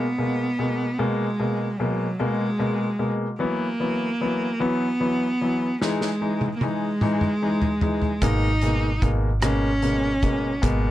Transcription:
0.00 1.00 B3 medium
0.18 0.45 B2 medium
0.18 0.45 G#3 soft
0.18 0.45 A#3 medium
0.59 0.85 B2 medium
0.59 0.85 G#3 soft
0.59 0.85 A#3 medium
0.98 1.25 B2 medium
0.98 1.80 G#3 medium
0.98 1.25 G#3 medium
0.98 1.25 A#3 medium
1.39 1.65 B2 medium
1.39 1.66 G#3 soft
1.39 1.66 A#3 medium
1.79 2.06 B2 medium
1.79 2.22 F#3 medium
1.79 2.05 G#3 soft
1.79 2.06 A#3 medium
2.19 2.46 B2 medium
2.19 2.45 G#3 medium
2.19 3.10 G#3 medium
2.19 2.46 A#3 medium
2.59 2.85 B2 medium
2.59 2.86 G#3 soft
2.59 2.86 A#3 medium
2.99 3.25 B2 soft
2.99 3.26 G#3 soft
2.99 3.26 A#3 medium
3.39 3.65 E3 medium
3.39 3.66 F#3 medium
3.39 4.64 A#3 medium
3.39 3.66 B3 medium
3.80 4.06 E3 soft
3.80 4.06 F#3 soft
3.80 4.06 B3 medium
4.21 4.46 E3 medium
4.21 4.47 F#3 soft
4.21 4.47 B3 medium
4.60 4.86 E3 medium
4.60 4.86 F#3 medium
4.60 4.86 B3 medium
4.60 5.82 B3 medium
5.00 5.26 E3 medium
5.00 5.27 F#3 soft
5.00 5.27 B3 medium
5.41 5.67 E3 medium
5.41 5.67 F#3 soft
5.41 5.67 B3 medium
5.81 6.07 E3 medium
5.81 6.07 G#3 medium
5.81 6.51 G#3 medium
5.81 6.07 D#4 medium
5.81 snare soft
6.01 snare soft
6.21 6.47 E3 soft
6.21 6.47 G#3 soft
6.21 6.47 D#4 medium
6.41 high tom soft
6.56 6.65 A#3 soft
6.61 6.88 E3 medium
6.61 6.88 G#3 soft
6.61 8.25 G#3 medium
6.61 6.88 D#4 medium
6.61 high tom medium
7.01 7.28 E3 medium
7.01 7.28 G#3 medium
7.01 7.28 D#4 medium
7.01 mid tom medium
7.21 mid tom medium
7.42 7.68 E3 soft
7.42 7.68 G#3 soft
7.42 7.68 D#4 medium
7.62 floor tom medium
7.81 8.08 E3 soft
7.81 8.08 G#3 soft
7.81 8.08 D#4 medium
7.81 floor tom medium
8.02 floor tom medium
8.21 8.98 G#1 medium
8.21 8.48 B2 medium
8.21 8.48 G#3 medium
8.21 8.48 A#3 medium
8.21 9.03 D#4 medium
8.21 kick medium
8.21 closed hi-hat medium
8.61 8.88 B2 medium
8.61 8.88 G#3 soft
8.61 8.89 A#3 medium
8.61 closed hi-hat soft
9.02 10.59 G#1 medium
9.02 9.28 B2 medium
9.02 9.28 G#3 soft
9.02 9.29 A#3 medium
9.02 kick medium
9.02 closed hi-hat soft
9.42 9.68 B2 medium
9.42 9.69 G#3 medium
9.42 9.69 A#3 medium
9.42 10.65 C#4 medium
9.42 cross-stick medium
9.42 closed hi-hat medium
9.82 10.09 B2 medium
9.82 10.09 G#3 soft
9.82 10.09 A#3 medium
9.82 closed hi-hat soft
10.22 10.49 B2 medium
10.22 10.49 G#3 soft
10.22 10.49 A#3 medium
10.22 kick medium
10.22 closed hi-hat soft
10.62 10.91 G#1 medium
10.62 10.89 B2 medium
10.62 10.89 G#3 medium
10.62 10.89 A#3 medium
10.62 10.91 B3 medium
10.62 kick medium
10.62 closed hi-hat medium

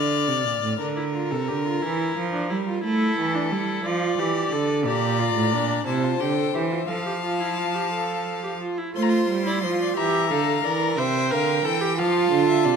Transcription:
0.00 0.30 D3 medium
0.00 0.78 D5 loud
0.00 0.80 F6 medium
0.28 0.47 C3 medium
0.46 0.62 A#2 medium
0.63 0.80 A2 medium
0.80 1.34 D3 medium
0.80 0.96 D4 medium
0.80 2.80 A#4 medium
0.97 1.04 E4 medium
1.14 1.33 F4 medium
1.31 1.51 C3 medium
1.31 1.50 A4 medium
1.48 1.83 D3 medium
1.48 1.65 G4 medium
1.66 1.84 F4 medium
1.83 2.16 E3 medium
1.83 2.33 E4 medium
2.17 2.52 F3 medium
2.33 2.49 D4 medium
2.50 2.84 G3 medium
2.50 2.57 E4 medium
2.67 2.83 F4 medium
2.84 3.17 A3 medium
2.84 3.36 E4 medium
2.84 3.84 A4 medium
3.18 3.53 E3 medium
3.34 3.52 D4 medium
3.52 3.84 G3 medium
3.52 3.87 E4 medium
3.85 4.17 F3 medium
3.85 4.21 F4 medium
3.85 4.84 D5 medium
4.18 4.51 E3 medium
4.18 4.54 G4 medium
4.51 4.88 D3 medium
4.51 4.85 A4 medium
4.86 5.36 A#2 medium
4.86 5.21 G4 medium
4.86 5.85 D5 medium
4.86 5.83 A#5 medium
5.19 5.53 F4 medium
5.36 5.54 A2 medium
5.52 5.85 A#2 medium
5.52 5.86 D4 medium
5.86 6.20 C3 medium
5.86 6.05 E4 medium
5.86 6.87 C5 medium
5.86 6.22 A5 medium
6.04 6.22 F4 medium
6.20 6.54 D3 medium
6.20 6.37 G4 medium
6.20 6.56 G5 medium
6.37 6.54 A4 medium
6.54 6.88 E3 medium
6.54 6.62 G4 medium
6.54 6.90 E5 medium
6.71 6.78 F4 medium
6.88 8.58 F3 medium
6.88 7.05 A4 medium
6.88 8.58 F5 medium
6.88 8.62 A5 medium
7.06 7.13 G4 medium
7.23 7.42 F4 medium
7.40 7.59 E4 medium
7.57 7.77 F4 medium
7.75 7.91 G4 medium
7.92 8.43 A4 medium
8.44 8.51 G4 medium
8.61 8.80 F4 medium
8.78 8.95 E4 medium
8.95 9.27 A3 medium
8.95 9.43 F4 medium
8.95 9.49 C5 medium
8.95 9.04 C6 medium
9.02 9.11 A#5 medium
9.09 9.99 C6 medium
9.29 9.65 G3 medium
9.46 9.63 E4 medium
9.46 9.65 D5 medium
9.63 9.96 F3 medium
9.63 9.96 F4 medium
9.63 9.80 C5 medium
9.81 9.97 D5 medium
9.97 10.32 E3 medium
9.97 10.30 G4 medium
9.97 10.33 E5 medium
9.97 10.98 A#5 medium
10.30 10.64 D3 medium
10.30 10.64 A4 medium
10.30 10.66 F5 medium
10.64 11.00 E3 medium
10.64 11.00 A#4 medium
10.64 10.99 D5 medium
10.98 11.33 C3 medium
10.98 11.33 C5 loud
10.98 11.31 E5 medium
10.98 11.97 G5 medium
11.31 11.64 D3 medium
11.31 11.67 A#4 medium
11.31 11.64 F5 medium
11.65 12.00 E3 medium
11.65 11.83 A4 loud
11.65 12.00 G5 medium
11.81 11.98 G4 medium
11.98 12.31 F3 medium
11.98 12.76 F4 loud
11.98 12.48 F5 medium
11.98 12.76 A5 medium
12.31 12.67 D3 medium
12.48 12.67 E5 medium
12.65 12.76 C3 medium
12.65 12.76 D5 medium

